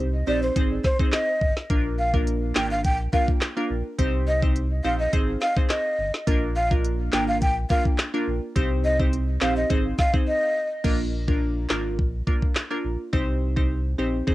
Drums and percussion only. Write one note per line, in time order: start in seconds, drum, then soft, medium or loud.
0.56 kick medium
0.56 closed hi-hat medium
0.84 kick loud
0.84 snare medium
1.00 kick loud
1.12 cross-stick medium
1.12 snare loud
1.12 clap medium
1.12 closed hi-hat medium
1.42 kick medium
1.57 snare medium
1.70 kick loud
1.70 closed hi-hat medium
2.14 kick loud
2.27 closed hi-hat medium
2.55 snare loud
2.55 clap medium
2.84 kick medium
2.84 closed hi-hat medium
3.13 kick loud
3.28 kick loud
3.41 snare loud
3.41 clap medium
3.41 closed hi-hat medium
3.99 kick loud
3.99 closed hi-hat medium
4.42 kick loud
4.56 closed hi-hat medium
5.13 kick loud
5.13 closed hi-hat medium
5.42 snare medium
5.57 kick loud
5.70 snare loud
5.70 clap medium
5.70 closed hi-hat medium
6.14 snare medium
6.27 kick loud
6.27 closed hi-hat medium
6.71 kick loud
6.84 closed hi-hat medium
7.12 snare loud
7.12 clap loud
7.42 kick medium
7.42 closed hi-hat medium
7.70 kick loud
7.85 kick loud
7.98 snare loud
7.98 clap medium
7.98 closed hi-hat medium
8.56 kick loud
8.56 closed hi-hat medium
9.00 kick loud
9.13 closed hi-hat medium
9.41 snare loud
9.41 clap medium
9.70 kick medium
9.70 closed hi-hat medium
9.99 kick loud
9.99 snare medium
10.14 kick loud
10.84 kick loud
10.84 crash medium
11.28 kick medium
11.70 snare loud
11.70 clap medium
11.99 kick medium
12.27 kick loud
12.42 kick medium
12.55 snare loud
12.55 clap medium
13.13 kick loud
13.57 kick medium
14.28 kick medium